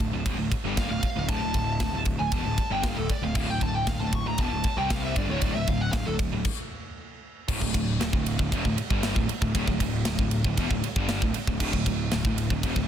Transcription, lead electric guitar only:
0.78 F5
1.29 A5
2.19 G#5
2.33 A5
2.72 G5
2.85 F5
2.97 A4
3.11 D5
3.23 F5
3.36 F5
3.50 G5
3.63 A5
3.75 G5
3.88 F5
4.00 A5
4.15 C#6
4.28 A#5
4.41 A5
4.78 G5
4.90 F5
5.04 E5
5.17 D5
5.31 C#5
5.42 D5
5.55 E5
5.69 F5
5.81 F#5
5.92 F5
6.06 A4

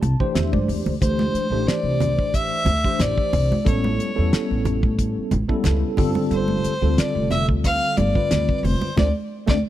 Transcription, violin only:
1.02 C5
1.67 D5
2.35 E5
3.00 D5
3.67 C#5
6.32 C5
6.99 D5
7.31 E5
7.64 F5
7.97 D5
8.58 D5
8.65 C5
8.98 D5
9.49 D5

